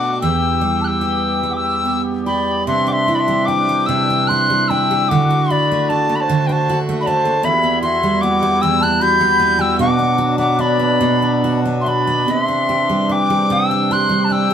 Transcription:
Already playing: accordion B2 A3 D4, steel-string acoustic guitar B2 A3 D4 F#4, flute F#5, tin whistle D6
0.19 steel-string acoustic guitar E2 G4, accordion E3 B3, flute G5, tin whistle E6
0.24 accordion G4
0.61 steel-string acoustic guitar G3
0.81 flute G5 A5, tin whistle F#6
0.87 tin whistle E6
1.01 steel-string acoustic guitar G4
1.43 steel-string acoustic guitar G3
1.51 flute F#5 G5, tin whistle D6
1.57 tin whistle E6
1.85 steel-string acoustic guitar B3
2.25 steel-string acoustic guitar G4, flute D5, tin whistle B5
2.66 steel-string acoustic guitar C3, accordion E3 C4 D4, flute E5, tin whistle C6
2.87 steel-string acoustic guitar D4, flute F#5, tin whistle D6
2.92 flute E5, tin whistle C6
3.08 steel-string acoustic guitar E4
3.15 flute D5, tin whistle B5 C6
3.20 flute E5
3.28 steel-string acoustic guitar G3
3.45 steel-string acoustic guitar D4, flute G5, tin whistle D6
3.69 steel-string acoustic guitar G3
3.86 steel-string acoustic guitar C3, flute G5, tin whistle E6
4.10 steel-string acoustic guitar D4
4.27 steel-string acoustic guitar E4, flute C6, tin whistle F#6
4.50 steel-string acoustic guitar G3
4.68 steel-string acoustic guitar D4, flute G5, tin whistle E6
4.91 steel-string acoustic guitar G3
5.08 accordion D3 A3 F#4, steel-string acoustic guitar D3, flute F#5, tin whistle D6
5.30 steel-string acoustic guitar D4
5.50 steel-string acoustic guitar F#4, flute D5, tin whistle B5
5.72 steel-string acoustic guitar A3
5.89 steel-string acoustic guitar D4, flute D5, tin whistle A5
6.09 steel-string acoustic guitar A3
6.15 flute D5, tin whistle B5
6.20 flute C5, tin whistle A5
6.30 steel-string acoustic guitar D3
6.47 steel-string acoustic guitar D4, flute B4, tin whistle G5
6.52 flute C5, tin whistle A5
6.69 steel-string acoustic guitar F#4
6.89 steel-string acoustic guitar A3
7.01 flute D5, tin whistle B5
7.06 steel-string acoustic guitar D4, flute C5, tin whistle A5
7.25 steel-string acoustic guitar A3
7.43 steel-string acoustic guitar E2, accordion G3 E4, flute E5, tin whistle B5
7.63 steel-string acoustic guitar B3
7.82 steel-string acoustic guitar F#4, flute E5, tin whistle C6
8.03 steel-string acoustic guitar G3
8.21 steel-string acoustic guitar B3, flute F#5, tin whistle D6
8.43 steel-string acoustic guitar G3
8.61 steel-string acoustic guitar E2, flute G5, tin whistle E6
8.81 steel-string acoustic guitar B3, flute A5, tin whistle F#6
9.01 steel-string acoustic guitar F#4, flute B5, tin whistle G6
9.21 steel-string acoustic guitar G3
9.40 steel-string acoustic guitar B3
9.59 steel-string acoustic guitar G3, flute G5, tin whistle E6
9.79 accordion B2 F#3 D4, steel-string acoustic guitar B2, flute F#5, tin whistle D6
9.99 steel-string acoustic guitar D4
10.18 steel-string acoustic guitar F#4
10.38 steel-string acoustic guitar B3, flute F#5, tin whistle D6
10.59 steel-string acoustic guitar D4, flute D5, tin whistle B5
10.79 steel-string acoustic guitar B3
11.01 steel-string acoustic guitar B2
11.22 steel-string acoustic guitar D4
11.44 steel-string acoustic guitar F#4
11.66 steel-string acoustic guitar B3
11.81 flute E5, tin whistle C6
11.86 steel-string acoustic guitar D4, flute D5, tin whistle B5
12.07 steel-string acoustic guitar B3
12.28 steel-string acoustic guitar C3, accordion E3 C4 D4, flute E5, tin whistle C6
12.48 steel-string acoustic guitar D4
12.69 steel-string acoustic guitar G4
12.89 steel-string acoustic guitar G3
13.09 steel-string acoustic guitar D4, flute G5, tin whistle D6
13.30 steel-string acoustic guitar G3
13.50 steel-string acoustic guitar C3, flute G5, tin whistle E6
13.71 steel-string acoustic guitar D4
13.91 steel-string acoustic guitar G4, flute C6, tin whistle F#6
14.09 steel-string acoustic guitar G3
14.24 flute A5, tin whistle F#6
14.30 steel-string acoustic guitar D4, flute G5, tin whistle E6
14.51 steel-string acoustic guitar G3

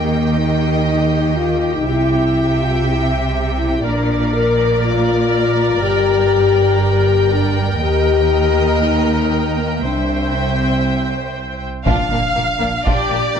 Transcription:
Already playing: double bass section D#2, cello section D#3, french horn section A#3, viola section G4, violin section D#5 G5
0.38 french horn section D#4
0.87 french horn section D#4
1.37 french horn section F4
1.75 french horn section D#4
1.86 double bass section C2, cello section C3, french horn section E4, violin section E5 G5
2.61 french horn section F4
2.86 french horn section E4
3.58 french horn section E4
3.84 double bass section A#1, cello section A#2, french horn section D4, viola section A#4, violin section D5
4.34 french horn section A#4
4.83 french horn section F4
5.82 double bass section G1, cello section G2, french horn section G4, violin section G5
6.82 french horn section G4
7.32 french horn section D4
7.80 double bass section D#2, cello section D#2, french horn section G4, viola section A#4, violin section D#5
8.82 french horn section D#4
9.58 french horn section A#3
9.82 double bass section C2, cello section C2, french horn section D4, viola section C5, violin section E5 G5
10.35 french horn section C4
11.86 double bass section A#1, cello section A#2, french horn section F3 D4, violin section D4 F4 F5, taiko, impact
12.11 double bass section A#1, cello section A#2, violin section A#3 D4
12.35 double bass section A#1, cello section A#2, violin section A#3
12.60 double bass section A#1, cello section A#2, violin section A#3 D4
12.85 double bass section A#1, cello section A#2, violin section D4 F4 D5, viola section G4, taiko
13.10 double bass section A#1, cello section A#2, violin section A#3 D4
13.36 double bass section A#1, cello section A#2, violin section A#3

